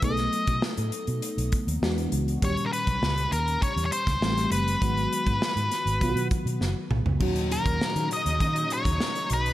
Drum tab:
CC |----------------|----------------|----------------|x---------------|
HH |xxxx-xxxxxxx-xxx|xxxx-xxxxxxx-xxx|xxxx-xxxxxxx----|-xxx-xxxxxxx-xxx|
SD |-o--o-------o---|----o------ooo--|----o-o-----o---|----o-------o---|
T2 |----------------|----------------|--------------o-|----------------|
FT |----------------|----------------|---------------o|----------------|
BD |o--o------o-----|o--o----o--o----|o--o----o-o-----|o--o----o--o----|